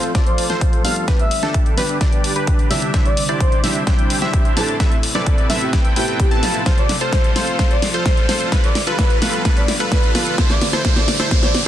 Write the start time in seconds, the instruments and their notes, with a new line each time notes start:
Already playing: analog synth pad F3 A3 C4 A4 C5, grand piano F3 A3 C4 F4, supersaw synth F4 A4 C5, digital synth lead C5, riser
0.03 closed hi-hat
0.15 supersaw synth F4 A4 D5, digital synth lead D5, kick, snare, closed hi-hat
0.27 soft synth lead C5, closed hi-hat
0.38 open hi-hat
0.50 supersaw synth F4 A4 C5, digital synth lead C5, snare
0.61 kick, closed hi-hat
0.73 closed hi-hat
0.83 grand piano G2 G3 B3 D4 G4, supersaw synth F4 A4 F5, digital synth lead F5, open hi-hat
1.08 analog synth pad D3 G3 B3 G4 B4, supersaw synth D4 G4 B4, digital synth lead B4, kick, snare, closed hi-hat
1.19 soft synth lead E5, closed hi-hat
1.31 open hi-hat
1.43 supersaw synth D4 G4 A4, digital synth lead A4, snare, closed hi-hat
1.54 kick, closed hi-hat
1.66 closed hi-hat
1.77 grand piano G2 G3 B3 D4 G4, supersaw synth D4 G4 B4, digital synth lead B4, snare, open hi-hat
1.89 closed hi-hat
2.01 supersaw synth D4 G4 D5, digital synth lead D5, kick, snare, closed hi-hat
2.12 closed hi-hat
2.24 open hi-hat
2.36 supersaw synth D4 G4 B4, digital synth lead B4, closed hi-hat
2.47 kick, closed hi-hat
2.59 closed hi-hat
2.69 grand piano C3 G3 C4 D4 E4, supersaw synth D4 G4 E5, digital synth lead E5, snare, open hi-hat
2.82 closed hi-hat
2.94 analog synth pad C4 E4 C5, supersaw synth D4 E4 G4 C5 E5, digital synth lead E5, kick, snare, closed hi-hat
3.06 soft synth lead D5, closed hi-hat
3.17 open hi-hat
3.29 supersaw synth D4 E4 G4 C5 D5, digital synth lead D5, closed hi-hat
3.40 soft synth lead C5, kick, closed hi-hat
3.52 closed hi-hat
3.63 grand piano C3 G3 C4 D4 E4, supersaw synth D4 E4 G4 C5 E5, digital synth lead E5, snare, open hi-hat
3.75 closed hi-hat
3.87 supersaw synth D4 E4 G4 C5 G5, digital synth lead G5, kick, snare, closed hi-hat
3.99 closed hi-hat
4.10 open hi-hat
4.22 supersaw synth D4 E4 G4 C5 E5, digital synth lead E5, snare, closed hi-hat
4.33 kick, closed hi-hat
4.45 closed hi-hat
4.56 grand piano A2 A3 C4 E4 B4, supersaw synth D4 E4 G4 C5 A5, soft synth lead A4, digital synth lead A5, snare, open hi-hat
4.68 closed hi-hat
4.80 analog synth pad C3 A3 E4 A4 B4, supersaw synth C4 E4 A4 B4 E5, digital synth lead E5, kick, snare, closed hi-hat
4.92 closed hi-hat
5.03 open hi-hat
5.15 supersaw synth C4 E4 A4 B4 D5, digital synth lead D5, snare, closed hi-hat
5.26 kick, closed hi-hat
5.38 closed hi-hat
5.49 grand piano A2 A3 B3 C4 E4, supersaw synth C4 E4 A4 B4 E5, digital synth lead E5, snare, open hi-hat
5.61 soft synth lead G4, closed hi-hat
5.73 supersaw synth C4 E4 A4 B4 G5, digital synth lead G5, kick, snare, closed hi-hat
5.85 closed hi-hat
5.96 grand piano A2 A3 B3 C4 E4, supersaw synth C4 E4 A4 B4 G5, soft synth lead G4, digital synth lead G5, open hi-hat
6.08 supersaw synth C4 E4 A4 B4 G5, digital synth lead G5, closed hi-hat
6.19 soft synth lead G4, kick, closed hi-hat
6.31 grand piano A2 A3 B3 C4 E4, supersaw synth C4 E4 A4 B4 A5, digital synth lead A5, closed hi-hat
6.42 grand piano F3 A3 C4 F4, snare, open hi-hat
6.55 closed hi-hat
6.66 analog synth pad F3 F4, supersaw synth F4 A4 C5, digital synth lead C5, kick, snare, closed hi-hat
6.78 soft synth lead D5, closed hi-hat
6.89 snare, open hi-hat
7.01 supersaw synth F4 A4 C5, digital synth lead C5, closed hi-hat
7.12 soft synth lead C5, kick, snare, closed hi-hat
7.24 closed hi-hat
7.35 grand piano F3 A3 C4 F4, supersaw synth F4 A4 C5, digital synth lead C5, snare, open hi-hat
7.47 closed hi-hat
7.59 supersaw synth F4 A4 C5, digital synth lead C5, kick, snare, closed hi-hat
7.71 soft synth lead D5, closed hi-hat
7.82 snare, open hi-hat
7.94 supersaw synth F4 A4 C5, digital synth lead C5, closed hi-hat
8.06 soft synth lead C5, kick, snare, closed hi-hat
8.17 closed hi-hat
8.28 grand piano F3 A3 C4 F4, supersaw synth F4 A4 C5, digital synth lead C5, snare, open hi-hat
8.40 closed hi-hat
8.52 analog synth pad D3 G3 B3 G4 B4, supersaw synth F4 A4 B4, digital synth lead B4, kick, snare, closed hi-hat
8.64 soft synth lead D5, closed hi-hat
8.75 snare, open hi-hat
8.87 supersaw synth F4 A4 B4, digital synth lead B4, closed hi-hat
8.99 soft synth lead B4, kick, snare, closed hi-hat
9.10 closed hi-hat
9.21 grand piano F3 A3 B3 F4, supersaw synth F4 A4 B4, digital synth lead B4, snare, open hi-hat
9.33 closed hi-hat
9.45 supersaw synth F4 A4 B4, digital synth lead B4, kick, snare, closed hi-hat
9.57 soft synth lead D5, closed hi-hat
9.68 snare, open hi-hat
9.80 supersaw synth F4 A4 B4, digital synth lead B4, closed hi-hat
9.92 soft synth lead B4, kick, snare, closed hi-hat
10.03 closed hi-hat
10.14 grand piano F3 A3 B3 F4, supersaw synth F4 A4 B4, digital synth lead B4, snare, open hi-hat
10.27 closed hi-hat
10.37 analog synth pad D3 C4 E4 C5, grand piano E3 A3 C4 E4, supersaw synth E4 A4 C5, digital synth lead C5, kick, snare, closed hi-hat
10.50 soft synth lead D5, snare, closed hi-hat
10.61 snare, open hi-hat
10.73 supersaw synth E4 A4 C5, digital synth lead C5, snare, closed hi-hat
10.83 grand piano E3 A3 C4 E4, supersaw synth E4 A4 C5, digital synth lead C5, kick, snare, closed hi-hat
10.96 soft synth lead D5, snare, closed hi-hat
11.08 snare, open hi-hat
11.19 supersaw synth E4 A4 C5, digital synth lead C5, snare, closed hi-hat
11.30 grand piano E3 A3 C4 E4, supersaw synth E4 A4 C5, digital synth lead C5, kick, snare, closed hi-hat
11.43 soft synth lead D5, snare, closed hi-hat
11.55 snare, open hi-hat